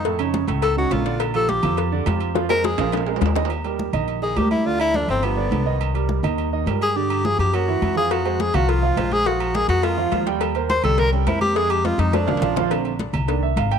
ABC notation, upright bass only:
X:1
M:4/4
L:1/8
Q:1/4=209
K:Fmix
V:1 name="Upright bass" clef=bass
F,,3 ^C,,3 B,,,2- | B,,,3 F,,3 F,,2- | F,,3 B,,,3 E,,2- | [K:Eb] E,,3 B,,,3 D,,2- |
D,,3 G,,,3 C,,2- | C,,3 E,,3 G,,2- | G,,3 _G,,3 F,,2- | F,,3 C,,3 B,,,2- |
B,,,3 F,,3 E,,2- | E,,3 C,,3 F,,2- | F,,3 F,,2 C,, B,,,2- | [K:Bb] B,,,3 C,,3 _A,,,2 |]